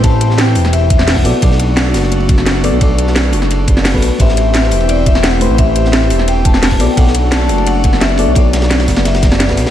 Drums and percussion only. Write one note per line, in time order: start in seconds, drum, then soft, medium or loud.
0.04 kick loud
0.04 closed hi-hat medium
0.04 ride medium
0.21 closed hi-hat medium
0.21 ride medium
0.30 snare soft
0.38 snare loud
0.38 closed hi-hat medium
0.38 ride medium
0.55 open hi-hat medium
0.55 ride medium
0.65 snare medium
0.73 closed hi-hat medium
0.73 ride medium
0.90 kick loud
0.90 closed hi-hat medium
0.90 ride medium
0.99 snare soft
0.99 snare medium
1.07 snare loud
1.07 closed hi-hat medium
1.07 open hi-hat medium
1.16 kick medium
1.25 open hi-hat medium
1.25 ride medium
1.42 kick loud
1.42 closed hi-hat medium
1.42 ride medium
1.51 snare soft
1.59 closed hi-hat medium
1.59 ride medium
1.77 snare loud
1.77 closed hi-hat medium
1.77 ride medium
1.86 snare soft
1.94 snare loud
1.94 open hi-hat medium
1.94 ride medium
2.03 snare soft
2.12 closed hi-hat medium
2.12 ride medium
2.20 ride soft
2.29 kick loud
2.29 closed hi-hat medium
2.29 ride medium
2.38 snare medium
2.46 snare loud
2.46 closed hi-hat medium
2.46 ride medium
2.64 open hi-hat medium
2.64 ride medium
2.81 kick loud
2.81 closed hi-hat medium
2.81 ride loud
2.98 closed hi-hat medium
2.98 ride medium
3.07 snare medium
3.16 snare loud
3.16 closed hi-hat medium
3.16 ride medium
3.32 open hi-hat medium
3.32 ride medium
3.42 snare medium
3.51 closed hi-hat medium
3.51 ride medium
3.68 kick loud
3.68 closed hi-hat medium
3.68 ride medium
3.77 snare soft
3.77 snare medium
3.84 snare loud
3.84 closed hi-hat medium
3.84 open hi-hat medium
3.94 kick medium
4.02 open hi-hat medium
4.02 ride medium
4.20 kick loud
4.20 closed hi-hat medium
4.20 ride medium
4.28 snare medium
4.37 closed hi-hat medium
4.37 ride medium
4.53 snare loud
4.53 closed hi-hat medium
4.53 ride medium
4.63 snare soft
4.71 open hi-hat medium
4.71 ride medium
4.80 ride soft
4.89 closed hi-hat medium
4.89 ride medium
5.06 kick loud
5.06 closed hi-hat medium
5.06 ride medium
5.15 snare soft
5.15 snare medium
5.24 snare loud
5.24 closed hi-hat medium
5.24 ride loud
5.41 open hi-hat medium
5.41 ride medium
5.58 kick loud
5.58 closed hi-hat medium
5.58 ride medium
5.76 closed hi-hat medium
5.76 ride medium
5.85 snare medium
5.93 snare loud
5.93 closed hi-hat medium
5.93 ride medium
6.10 open hi-hat medium
6.10 ride medium
6.19 snare medium
6.28 closed hi-hat medium
6.28 ride medium
6.45 kick loud
6.45 closed hi-hat medium
6.45 ride medium
6.53 snare soft
6.53 snare medium
6.63 snare loud
6.63 closed hi-hat medium
6.63 open hi-hat medium
6.71 kick medium
6.80 open hi-hat medium
6.80 ride medium
6.97 kick loud
6.97 closed hi-hat medium
6.97 ride medium
7.07 snare medium
7.15 closed hi-hat medium
7.15 ride medium
7.31 snare loud
7.31 closed hi-hat medium
7.31 ride medium
7.40 snare soft
7.49 open hi-hat medium
7.49 ride medium
7.58 ride soft
7.67 closed hi-hat medium
7.67 ride medium
7.84 kick loud
7.84 closed hi-hat loud
7.84 ride medium
7.93 snare soft
7.93 snare medium
8.01 snare loud
8.01 closed hi-hat medium
8.01 ride medium
8.17 open hi-hat medium
8.17 ride medium
8.35 kick loud
8.35 closed hi-hat medium
8.35 ride medium
8.53 snare loud
8.53 closed hi-hat loud
8.53 ride medium
8.62 snare loud
8.62 ride medium
8.71 snare loud
8.71 closed hi-hat medium
8.71 ride medium
8.79 snare medium
8.79 ride medium
8.88 kick medium
8.88 snare loud
8.88 open hi-hat medium
8.88 ride medium
8.96 snare loud
8.96 snare medium
8.96 ride medium
9.05 snare loud
9.05 closed hi-hat medium
9.05 ride medium
9.14 snare loud
9.14 ride medium
9.23 kick loud
9.23 snare loud
9.23 closed hi-hat loud
9.23 ride medium
9.31 snare soft
9.31 snare loud
9.31 snare medium
9.31 ride medium
9.40 snare loud
9.40 closed hi-hat medium
9.40 ride medium
9.49 kick medium
9.49 snare loud
9.49 ride medium
9.57 snare loud
9.57 open hi-hat medium
9.57 ride medium
9.66 snare loud
9.66 snare soft
9.66 ride medium